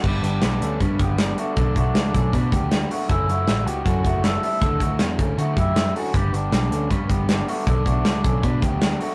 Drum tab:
CC |x-------|--------|--------|--------|
HH |-xxxxxxx|xxxxxxxo|xxxxxxxo|xxxxxxxo|
SD |--o---o-|--o---o-|--o---o-|--o---o-|
BD |o---oo--|oo-ooo--|o---oo--|oo-o-o--|

CC |--------|--------|
HH |xxxxxxxo|xxxxxxxo|
SD |--o---o-|--o---o-|
BD |o---oo--|oo-ooo--|